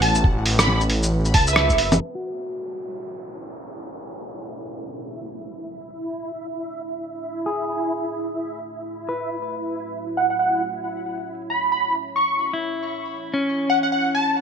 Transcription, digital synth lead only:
0.02 0.25 A5 loud
0.59 0.82 B5 medium
1.34 1.45 A5 medium
1.48 2.01 E5 medium
10.17 10.26 F#5 medium
10.30 10.36 F#5 medium
10.39 10.63 F#5 medium
11.50 11.70 B5 medium
11.72 11.95 B5 medium
12.16 12.51 C#6 medium
13.70 13.78 F#5 medium
13.83 13.89 F#5 medium
13.92 14.14 F#5 medium
14.15 14.38 A5 medium

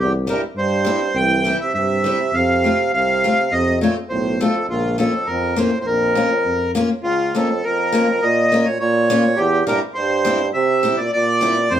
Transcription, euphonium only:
0.01 0.14 E2 medium
0.30 0.43 G2 medium
0.57 1.11 G2 loud
1.17 1.57 E3 medium
1.61 1.74 C3 medium
1.76 2.30 C3 medium
2.35 2.90 C3 medium
2.94 3.48 C3 medium
3.53 3.80 C3 medium
3.81 3.94 A#2 medium
4.10 4.38 A2 medium
4.41 4.67 F2 medium
4.70 4.97 C#2 medium
5.00 5.26 F2 medium
5.28 5.55 F2 medium
5.57 5.77 A2 medium
5.79 5.85 A2 medium
5.86 6.71 F2 medium
7.03 7.32 C#2 medium
7.35 7.62 F2 medium
7.65 8.19 F2 medium
8.23 8.63 A#2 loud
8.67 8.80 A#2 medium
8.81 9.34 A#2 loud
9.38 9.65 E2 loud
9.67 9.79 G2 medium
9.96 10.50 G2 medium
10.54 10.95 C3 medium
10.98 11.11 A#2 medium
11.13 11.68 A#2 medium
11.72 11.80 A2 medium

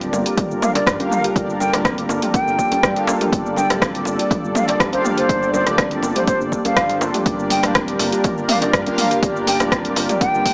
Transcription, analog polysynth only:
0.00 0.84 A#3 medium
0.00 0.84 D4 medium
0.00 0.84 F4 medium
0.00 0.84 G4 medium
0.00 0.84 D5 medium
0.87 0.97 A#3 medium
0.87 0.97 D4 medium
0.87 0.97 F4 medium
0.87 0.97 G4 medium
0.87 0.96 D5 medium
1.00 1.33 A#3 medium
1.00 1.33 D4 medium
1.00 1.33 F4 medium
1.00 1.33 G4 medium
1.00 1.33 F5 loud
1.36 1.70 A#3 medium
1.36 1.70 D4 medium
1.36 1.70 F4 medium
1.36 1.70 G4 medium
1.36 1.70 D5 medium
1.73 2.81 A#3 medium
1.73 2.81 D4 medium
1.73 2.81 F4 medium
1.73 2.81 G4 medium
1.73 2.81 D5 medium
2.83 2.93 A#3 medium
2.83 2.93 D4 medium
2.83 2.93 F4 medium
2.83 2.93 G4 medium
2.83 2.93 D5 medium
2.96 3.30 A#3 loud
2.96 3.30 D4 medium
2.96 3.30 F4 medium
2.96 3.30 G4 medium
2.96 3.30 F5 loud
3.32 3.67 A#3 medium
3.32 3.67 D4 medium
3.32 3.67 F4 medium
3.32 3.67 G4 medium
3.32 3.67 D5 medium
3.70 4.78 A#3 medium
3.70 4.78 D4 medium
3.70 4.78 F4 medium
3.70 4.78 G4 medium
3.70 4.78 D5 medium
4.80 4.90 A#3 medium
4.80 4.90 D4 medium
4.80 4.90 F4 medium
4.80 4.90 G4 medium
4.80 4.90 D5 medium
4.93 5.26 A#3 loud
4.93 5.26 D4 medium
4.93 5.26 F4 medium
4.93 5.26 G4 medium
4.93 5.26 F5 loud
5.29 5.64 A#3 medium
5.29 5.64 D4 medium
5.29 5.64 F4 medium
5.29 5.64 G4 medium
5.29 5.64 D5 medium
5.67 6.63 A#3 medium
5.67 6.63 D4 medium
5.67 6.63 F4 medium
5.67 6.63 G4 medium
5.67 6.63 D5 loud
6.65 7.23 A#3 medium
6.65 7.23 D4 medium
6.65 7.23 F4 medium
6.65 7.23 G4 medium
6.65 7.23 C5 medium
7.26 7.60 A#3 medium
7.26 7.60 D4 medium
7.26 7.60 F4 medium
7.26 7.60 G4 medium
7.26 7.60 D5 medium
7.63 8.71 A#3 medium
7.63 8.71 D4 medium
7.63 8.71 F4 medium
7.63 8.71 G4 medium
7.63 8.71 D5 loud
8.73 8.83 A#3 medium
8.73 8.83 D4 medium
8.73 8.83 F4 medium
8.73 8.83 G4 medium
8.73 8.83 D5 medium
8.86 9.20 A#3 loud
8.86 9.20 D4 medium
8.86 9.20 F4 medium
8.86 9.20 G4 medium
8.86 9.20 F5 loud
9.23 9.57 A#3 medium
9.23 9.57 D4 medium
9.23 9.57 F4 medium
9.23 9.57 G4 medium
9.23 9.57 D5 medium
9.60 10.54 A#3 medium
9.60 10.54 D4 medium
9.60 10.54 F4 medium
9.60 10.54 G4 medium
9.60 10.54 D5 loud

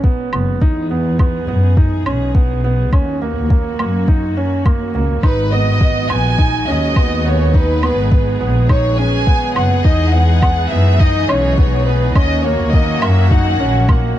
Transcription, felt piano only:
0.04 0.28 B3 medium
0.33 0.57 B3 medium
0.62 0.86 D#4 medium
0.91 1.14 B3 medium
1.19 1.43 B3 medium
1.48 1.72 B3 medium
1.77 2.01 D#4 medium
2.06 2.30 C#4 medium
2.35 2.59 B3 medium
2.64 2.88 B3 medium
2.93 3.17 C#4 medium
3.22 3.45 A#3 medium
3.51 3.74 A#3 medium
3.80 4.03 A#3 medium
4.08 4.32 D#4 medium
4.37 4.61 C#4 medium
4.66 4.90 A#3 medium
4.95 5.18 A#3 medium
5.23 5.47 D#4 medium
5.52 5.76 B3 medium
5.81 6.05 B3 medium
6.10 6.34 B3 medium
6.39 6.63 D#4 medium
6.68 6.91 C#4 medium
6.96 7.20 B3 medium
7.25 7.49 B3 medium
7.54 7.78 D#4 medium
7.83 8.07 B3 medium
8.11 8.35 B3 medium
8.40 8.64 B3 medium
8.69 8.93 D#4 medium
8.98 9.22 C#4 medium
9.27 9.51 B3 medium
9.56 9.80 B3 medium
9.85 10.09 D#4 medium
10.14 10.38 B3 medium
10.43 10.66 B3 medium
10.71 10.95 B3 medium
11.00 11.24 D#4 medium
11.29 11.53 C#4 medium
11.58 11.82 B3 medium
11.87 12.11 B3 medium
12.16 12.40 C#4 medium
12.44 12.68 A#3 medium
12.74 12.97 A#3 medium
13.02 13.26 A#3 medium
13.31 13.55 D#4 medium
13.60 13.84 C#4 medium
13.88 14.12 A#3 medium

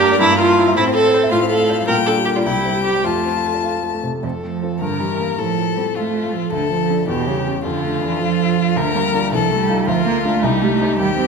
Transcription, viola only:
0.00 0.19 G4 loud
0.20 0.38 E4 loud
0.39 0.75 F4 loud
0.76 0.84 E4 loud
0.94 1.31 A4 loud
1.31 1.39 F4 medium
1.50 1.87 A4 medium
1.87 1.95 A#4 loud
2.06 2.14 A4 medium
2.25 2.29 G4 medium
2.35 2.39 F4 medium
2.44 2.83 E4 medium
2.84 3.05 G4 medium
3.04 3.64 F4 medium
4.23 4.82 A4 soft
4.81 5.40 A#4 soft
5.38 7.09 A4 soft
7.08 7.64 G4 soft
7.64 8.78 A4 medium
8.76 9.34 A#4 medium
9.32 9.87 A4 medium
9.87 10.45 A#4 medium
10.44 11.27 G4 medium

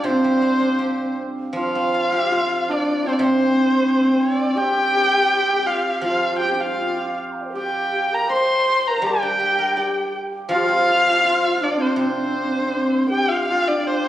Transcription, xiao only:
0.07 1.19 C4 medium
1.57 2.21 F4 medium
2.25 2.33 G4 medium
2.32 2.71 F4 medium
2.70 3.08 D4 medium
3.07 3.18 C4 medium
3.18 4.57 C4 medium
4.55 5.58 G4 medium
5.58 5.67 G4 medium
5.66 6.03 F4 medium
6.03 6.41 F4 medium
6.39 6.51 G4 medium
6.52 6.54 C4 soft
6.52 6.60 D4 soft
6.58 7.16 F4 medium
7.30 7.35 A#5 soft
7.30 7.32 C6 soft
7.36 7.40 F5 soft
7.36 7.38 G5 soft
7.41 7.44 D5 soft
7.45 7.49 C5 soft
7.50 8.05 G4 medium
7.50 7.52 A#4 soft
8.28 8.81 C5 medium
8.84 9.01 A#4 medium
9.01 9.12 G4 medium
9.11 9.19 A#4 medium
9.18 9.76 G4 medium
9.77 10.11 G4 medium
10.49 10.58 F4 medium
10.56 10.66 G4 medium
10.65 10.74 F4 medium
10.73 10.80 G4 medium
10.79 10.87 F4 medium
10.86 10.96 G4 medium
10.94 11.23 F4 medium
11.24 11.63 F4 medium
11.61 11.79 D4 medium
11.78 11.97 C4 medium
11.98 12.07 C4 medium
12.05 12.14 D4 medium
12.13 12.22 C4 medium
12.21 12.29 D4 medium
12.28 12.38 C4 soft
12.37 12.46 D4 soft
12.44 12.55 C4 soft
12.53 12.63 D4 soft
12.61 12.69 C4 soft
12.68 12.78 D4 medium
12.76 13.06 C4 medium
13.07 13.31 G4 medium
13.07 13.12 A#4 medium
13.29 13.48 F4 medium
13.49 13.70 F4 medium
13.69 14.08 D4 medium

